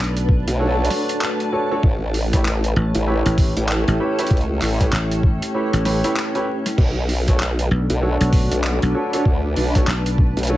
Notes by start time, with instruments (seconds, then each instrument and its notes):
Already playing: slap bass B1, analog synth pad A3 D4 F#4 B4, ambient pad D4 B4 A5
0.04 closed hi-hat
0.17 closed hi-hat
0.29 kick
0.48 wobble bass B1, closed hi-hat
0.60 grand piano D4 F#4 A4 C#5
0.85 closed hi-hat
0.90 snare, open hi-hat
1.09 closed hi-hat
1.21 clap
1.40 closed hi-hat
1.52 grand piano D4 F#4 A4 C#5
1.71 grand piano D4 F#4 A4 C#5
1.83 wobble bass A1, analog synth pad A3 E4 G4 C#5, ambient pad C#4, kick
2.14 open hi-hat
2.23 ambient pad A4
2.33 grand piano E4 G4 B4 C#5, kick, snare, closed hi-hat
2.45 clap
2.64 closed hi-hat
2.76 slap bass A1
2.95 wobble bass A1, closed hi-hat
3.07 grand piano E4 G4 B4 C#5
3.26 slap bass A1, closed hi-hat
3.38 kick, open hi-hat
3.57 wobble bass A1, closed hi-hat
3.69 clap
3.88 slap bass A1, closed hi-hat
4.00 grand piano E4 G4 B4 C#5
4.07 ambient pad G5
4.19 grand piano E4 G4 B4 C#5, closed hi-hat
4.20 closed hi-hat
4.27 closed hi-hat
4.31 wobble bass C#2, kick, closed hi-hat
4.37 closed hi-hat
4.41 closed hi-hat
4.62 wobble bass A1, clap, open hi-hat
4.80 grand piano E4 G4 B4 C#5, kick, snare, closed hi-hat
4.93 slap bass A1, clap
5.12 closed hi-hat
5.23 kick
5.42 closed hi-hat
5.54 grand piano E4 G4 B4 C#5
5.73 slap bass A1, closed hi-hat
5.85 grand piano E4 G4 B4 C#5, snare, open hi-hat
6.04 grand piano E4 G4 B4 C#5, closed hi-hat
6.16 clap
6.35 grand piano E4 G4 B4 C#5, closed hi-hat
6.66 snare, closed hi-hat
6.78 wobble bass B1, analog synth pad A3 D4 F#4 B4, ambient pad D4, kick, crash
7.09 open hi-hat
7.26 grand piano D4 F#4 A4 C#5, ambient pad B4 A5, kick, snare, closed hi-hat
7.40 clap
7.59 closed hi-hat
7.71 slap bass B1
7.90 wobble bass B1, closed hi-hat
8.02 grand piano D4 F#4 A4 C#5
8.21 slap bass B1, closed hi-hat
8.33 kick, open hi-hat
8.51 wobble bass B1, closed hi-hat
8.63 clap
8.82 slap bass B1, closed hi-hat
8.95 grand piano D4 F#4 A4 C#5
9.13 grand piano D4 F#4 A4 C#5, closed hi-hat
9.25 wobble bass D2, kick
9.56 wobble bass B1, open hi-hat
9.75 grand piano D4 F#4 A4 C#5, kick, snare, closed hi-hat
9.87 slap bass B1, clap
10.06 closed hi-hat
10.18 kick
10.37 wobble bass B1, closed hi-hat
10.39 closed hi-hat
10.43 closed hi-hat
10.45 closed hi-hat
10.47 grand piano D4 F#4 A4 C#5, closed hi-hat